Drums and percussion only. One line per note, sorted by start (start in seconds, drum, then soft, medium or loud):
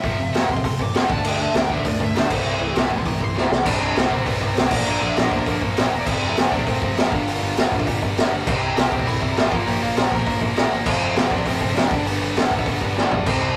0.04 kick loud
0.04 open hi-hat medium
0.34 snare loud
0.34 open hi-hat medium
0.49 kick medium
0.57 kick medium
0.64 kick loud
0.64 open hi-hat medium
0.79 kick medium
0.94 snare loud
0.94 open hi-hat medium
1.10 kick loud
1.24 crash loud
1.54 snare loud
1.54 open hi-hat medium
1.70 kick medium
1.78 kick medium
1.85 kick loud
1.85 open hi-hat medium
2.00 kick medium
2.15 snare loud
2.15 open hi-hat medium
2.30 kick loud
2.30 crash loud
2.75 snare loud
2.75 open hi-hat medium
2.91 kick medium
2.98 kick medium
3.05 kick loud
3.05 open hi-hat medium
3.21 kick medium
3.37 snare medium
3.52 snare medium
3.66 kick loud
3.66 crash loud
3.96 snare loud
3.96 open hi-hat medium
4.11 kick medium
4.18 kick medium
4.26 kick loud
4.26 open hi-hat medium
4.41 kick medium
4.56 snare loud
4.56 open hi-hat medium
4.71 kick loud
4.71 crash loud
5.16 snare loud
5.16 open hi-hat medium
5.31 kick medium
5.39 kick medium
5.46 kick loud
5.46 open hi-hat medium
5.61 kick loud
5.77 snare loud
5.77 open hi-hat medium
6.07 kick loud
6.07 crash loud
6.36 snare loud
6.36 open hi-hat medium
6.52 kick medium
6.59 kick medium
6.67 kick loud
6.67 open hi-hat medium
6.82 kick loud
6.97 snare loud
6.97 open hi-hat medium
7.12 kick loud
7.27 open hi-hat medium
7.57 snare loud
7.57 open hi-hat medium
7.72 kick medium
7.80 kick loud
7.87 kick loud
7.87 open hi-hat medium
8.02 kick loud
8.17 snare loud
8.17 open hi-hat medium
8.47 kick loud
8.47 crash loud
8.77 snare loud
8.77 open hi-hat medium
8.92 kick medium
8.99 kick medium
9.07 kick loud
9.07 open hi-hat medium
9.22 kick medium
9.37 snare loud
9.37 open hi-hat medium
9.52 kick loud
9.67 open hi-hat medium
9.96 snare loud
9.96 open hi-hat medium
10.12 kick medium
10.19 kick medium
10.27 kick loud
10.27 open hi-hat medium
10.41 kick medium
10.56 snare loud
10.56 open hi-hat medium
10.86 kick loud
10.86 crash loud
11.16 snare loud
11.16 open hi-hat medium
11.31 kick medium
11.38 kick medium
11.46 kick loud
11.46 open hi-hat medium
11.61 kick medium
11.76 snare loud
11.76 open hi-hat medium
11.91 kick loud
12.06 open hi-hat medium
12.36 snare loud
12.36 open hi-hat medium
12.51 kick medium
12.59 kick medium
12.66 kick loud
12.66 open hi-hat medium
12.81 kick medium
12.98 snare medium
13.11 floor tom loud
13.26 kick loud
13.26 crash loud